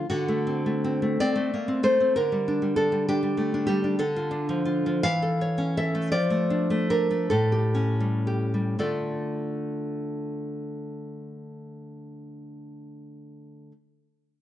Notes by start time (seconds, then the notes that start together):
0.10 D3 F#4
0.28 A3
0.47 C4
0.66 A3
0.84 C4
1.02 A3
1.20 C4 D5
1.36 A3
1.54 A#3
1.68 C4
1.83 A3 C5
2.00 C4
2.16 D3 A#4
2.32 G3
2.48 D4
2.62 G3
2.76 D4 A4
2.92 G3
3.09 D4 G4
3.23 G3
3.37 A3
3.54 D4
3.67 G3 G4
3.84 D4
3.99 D3 A4
4.16 F4
4.31 D4
4.49 F3
4.65 F4
4.86 F3
5.03 E3 F5
5.22 A4
5.41 C#5
5.58 C#4
5.77 A4 E5
5.95 A3
6.12 F3 D5
6.30 A3
6.50 D4
6.70 A3
6.90 D4 A#4
7.11 A3
7.30 A2 A4
7.52 G4
7.75 C#4
8.00 G3
8.27 G4
8.54 G3
8.79 D3 A3 F4 A4 D5